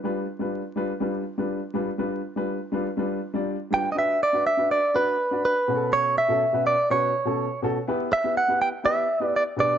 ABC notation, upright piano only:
X:1
M:4/4
L:1/16
Q:1/4=123
K:Gmix
V:1 name="Upright piano"
[G,DFB]2 z [G,DFB]2 z [G,DFB] z [G,DFB]2 z [G,DFB]2 z [G,DFB] z | [G,DFB]2 z [G,DFB]2 z [G,DFB] z [G,DFB]2 z [G,DFd]2 z [G,DFB] z | [K:Bm] [DFB]2 z [DFB] z [DFB]2 z [DFB]2 z [DFd]2 z [B,,CF^GA]2- | [B,,CF^GA]2 z [B,,CFA] z [B,,CFB]2 z [B,,CFB]2 z [B,,CFA]2 z [B,,CFA] z |
[B,EGB]2 z [B,EGB] z [B,EGB]2 z [B,EGB]2 z [B,EGB]2 z [B,,DGB]2 |]